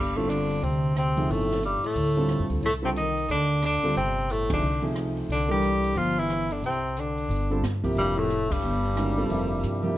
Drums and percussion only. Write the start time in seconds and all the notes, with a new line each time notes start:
0.30 closed hi-hat
0.51 open hi-hat
0.64 open hi-hat
0.97 cross-stick, closed hi-hat
1.17 open hi-hat
1.31 open hi-hat
1.51 snare
1.63 closed hi-hat
1.84 open hi-hat
1.96 open hi-hat
2.29 cross-stick, closed hi-hat
2.50 kick, open hi-hat
2.63 open hi-hat
2.96 closed hi-hat
3.17 open hi-hat
3.30 open hi-hat
3.62 cross-stick, closed hi-hat
3.84 open hi-hat
3.97 open hi-hat
4.30 closed hi-hat
4.50 kick, ride
4.96 cross-stick, closed hi-hat
5.17 open hi-hat
5.30 open hi-hat
5.63 closed hi-hat
5.84 open hi-hat
5.96 open hi-hat
6.30 cross-stick, closed hi-hat
6.51 open hi-hat
6.64 open hi-hat
6.97 closed hi-hat
7.18 open hi-hat
7.31 open hi-hat
7.64 cross-stick, snare, closed hi-hat
7.84 kick, open hi-hat
7.97 open hi-hat
8.30 closed hi-hat
8.51 kick, ride
8.97 cross-stick, closed hi-hat
9.18 open hi-hat
9.30 open hi-hat
9.64 closed hi-hat